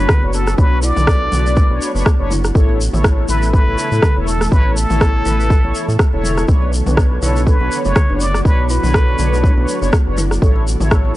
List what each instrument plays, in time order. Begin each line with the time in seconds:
Already playing: ambient pad F#3 B3 D4 F#4, muted trumpet B4
0.00 analog polysynth D4 B4 C#5
0.09 kick, cross-stick, mid tom, shaker
0.23 analog synth bass F#1, kalimba B3, analog polysynth D4 B4 C#5
0.33 muted trumpet A4, shaker
0.47 kalimba B3, cross-stick, shaker
0.58 analog synth bass B1, kalimba B3, analog polysynth D4 B4 C#5, muted trumpet B4, kick, shaker
0.82 kalimba E4, muted trumpet D5, shaker
0.96 analog synth bass B1, analog polysynth D4 B4 D5, mid tom, shaker
1.07 kalimba A4, kick, cross-stick, shaker
1.21 kalimba B3
1.32 analog synth bass B1, analog polysynth D4 B4 D5, mid tom, shaker
1.46 kalimba A3, shaker
1.56 kick, shaker
1.70 analog synth bass B1, kalimba B3, analog polysynth D4 B4 C#5
1.82 shaker
1.95 analog synth bass F#1, kalimba B3, analog polysynth D4 B4 C#5, shaker
2.06 kalimba B3, kick, cross-stick, shaker
2.19 analog synth bass F#1, analog polysynth D4 B4 C#5
2.30 kalimba E4, mid tom, shaker
2.44 cross-stick, shaker
2.55 analog synth bass A1, ambient pad C#3 E3 A3 E4 A4, analog polysynth E4 A4 C#5, kalimba A4, kick, shaker
2.69 kalimba B3
2.81 shaker
2.93 analog synth bass A1, kalimba A3, analog polysynth E4 A4 C#5, mid tom, shaker
3.04 kick, cross-stick, shaker
3.18 kalimba B3
3.28 analog synth bass A1, analog polysynth E4 A4 B4, muted trumpet B4, mid tom, shaker
3.43 kalimba B3, shaker
3.53 kalimba B3, muted trumpet B4, kick, shaker
3.67 analog synth bass A1, analog polysynth E4 A4 C#5
3.78 kalimba E4, shaker
3.91 analog synth bass A2, analog polysynth E4 A4 B4, shaker
4.02 kalimba A4, kick, cross-stick, mid tom, shaker
4.16 analog synth bass E1, kalimba B3, analog polysynth E4 A4 C#5
4.27 muted trumpet A4, shaker
4.41 kalimba A3, cross-stick, shaker
4.52 analog synth bass A1, analog polysynth E4 A4 C#5, muted trumpet B4, kick, shaker
4.66 kalimba B3
4.76 muted trumpet A4, shaker
4.90 analog synth bass A1, kalimba B3, analog polysynth E4 A4 C#5, mid tom, shaker
5.01 kalimba B3, kick, cross-stick, shaker
5.25 analog synth bass A1, analog polysynth E4 A4 B4, kalimba E4, mid tom, shaker
5.40 shaker
5.50 kalimba A4, kick, shaker
5.64 analog synth bass A1, kalimba B3, analog polysynth E4 A4 C#5
5.75 shaker
5.88 analog synth bass A2, kalimba A3, shaker
5.99 kick, cross-stick, shaker
6.13 analog synth bass E1, kalimba B3, analog polysynth E4 A4 C#5
6.24 mid tom, shaker
6.38 kalimba B3, cross-stick, shaker
6.48 analog synth bass B1, ambient pad D3 F#3 B3 F#4 C#5, analog polysynth D4 B4 C#5, kick, shaker
6.62 kalimba B3
6.73 shaker
6.86 analog synth bass B1, kalimba B3, analog polysynth D4 B4 C#5, mid tom, shaker
6.97 kalimba B3, kick, cross-stick, shaker
7.22 analog synth bass B1, analog polysynth D4 B4 C#5, kalimba E4, muted trumpet A4, mid tom, shaker
7.36 shaker
7.47 kalimba A4, muted trumpet B4, kick, shaker
7.60 analog synth bass B1, kalimba B3, analog polysynth D4 B4 C#5
7.72 shaker
7.85 analog synth bass F#1, kalimba A3, analog polysynth D4 B4 C#5, muted trumpet C#5, shaker
7.96 kick, cross-stick, mid tom, shaker
8.10 analog synth bass F#1, kalimba B3, analog polysynth D4 B4 C#5
8.20 muted trumpet D5, shaker
8.34 kalimba B3, cross-stick, shaker
8.45 analog synth bass B1, kalimba B3, analog polysynth D4 B4 C#5, ambient pad D4, muted trumpet B4, kick, shaker
8.70 kalimba E4, muted trumpet B4, shaker
8.83 analog synth bass B1, analog polysynth D4 B4 C#5, mid tom, shaker
8.94 kalimba A4, kick, cross-stick, shaker
9.09 kalimba B3
9.19 analog synth bass B1, analog polysynth D4 B4 C#5, mid tom, shaker
9.33 kalimba A3, shaker
9.44 kick, shaker
9.57 analog synth bass B1, kalimba B3, analog polysynth D4 B4 C#5
9.68 shaker
9.82 analog synth bass F#1, kalimba B3, analog polysynth D4 B4 C#5, shaker
9.93 kalimba B3, kick, cross-stick, shaker
10.06 analog synth bass F#1, analog polysynth D4 B4 C#5
10.17 kalimba E4, mid tom, shaker
10.31 cross-stick, shaker
10.42 analog synth bass A1, ambient pad E3 A3 E4 A4, analog polysynth E4 A4 C#5, kalimba A4, kick, shaker
10.56 kalimba B3
10.68 shaker
10.80 analog synth bass A1, kalimba A3, analog polysynth E4 A4 C#5, mid tom, shaker
10.91 kick, cross-stick, shaker
11.05 kalimba B3